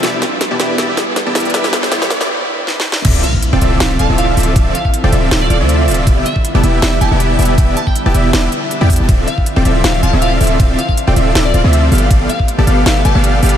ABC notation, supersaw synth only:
X:1
M:4/4
L:1/16
Q:"Swing 16ths" 1/4=159
K:Ddor
V:1 name="Supersaw synth"
[B,EGde]2 z3 [B,EGda] [B,EGde]2 [B,EGde]2 z3 [B,EGda] [B,EGde]2 | [B,EGde]2 z2 [B,EGde]2 z8 z2 | [CFAde]2 z3 [CFAdg] [CFAde]2 [CFde]2 [CFAdf] [CFAde]3 [CFAde]2 | [CAd]2 z3 [CFAdg] [CFAde]2 [CFAde]2 [CFAdf] [CFAde]3 [CFAde]2 |
[B,EGde]2 z3 [B,EGda] [B,EGde]2 [B,EGde]2 [B,EGdg] [B,EGde]3 [B,EGde]2 | [Ee]2 z3 [B,EGda] [B,EGde]2 [B,EGde]2 z3 [B,EGdg]2 [B,EGda] | [CFAde]2 z3 [CFAdg] [CFAde]2 [CFAde]2 [CFAdf] [CFAde]3 [CFAde]2 | [Ade]2 z3 [CFAdg] [CFAde]2 [CFAde]2 [CFAdf] [CFAde]3 [B,GAdf]2 |
[B,GAdf]2 z3 [B,GAda] [B,GAdf]2 [B,GAde]2 [B,GAdg] [B,GAdf]3 [B,GAdf]2 |]